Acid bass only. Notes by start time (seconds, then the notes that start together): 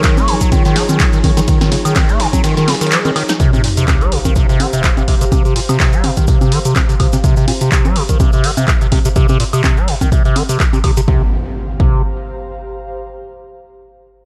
0.17 A#3
0.28 D#3
0.41 F#3
0.52 D#3
0.65 D#3
0.76 F#3
0.89 D#3
1.13 D#3
1.24 D#3
1.37 D#3
1.48 D#3
1.61 D#3
1.72 C#3
1.85 D#3
2.09 A#3
2.20 D#3
2.33 F#3
2.44 D#3
2.57 D#3
2.68 C#3
2.81 D#3
2.92 F3
3.05 D#3
3.16 D#3
3.29 D#4
3.40 C3
3.53 C3
3.64 A#2
3.77 C3
3.88 C3
4.01 G3
4.12 C3
4.25 D#3
4.36 C3
4.49 C3
4.60 D#3
4.73 C3
4.97 C3
5.08 C3
5.21 C3
5.32 C3
5.45 C3
5.56 A#2
5.69 C3
5.93 G3
6.04 C3
6.17 D#3
6.28 C3
6.41 C3
6.52 D#3
6.65 C3
6.89 C3
7.00 C3
7.13 C3
7.24 C3
7.37 C3
7.48 A#2
7.61 C3
7.85 G3
7.96 C3
8.09 D#3
8.20 C3
8.33 C3
8.44 D#3
8.57 C3
8.68 C3
8.81 C3
8.92 C3
9.05 C3
9.16 C3
9.29 C3
9.40 A#2
9.53 C3
9.64 C3
9.77 G3
9.88 C3
10.01 D#3
10.12 C3
10.25 C3
10.36 D#3
10.49 C3
10.73 C3
10.84 C3
10.97 C3
11.08 C3
11.80 C3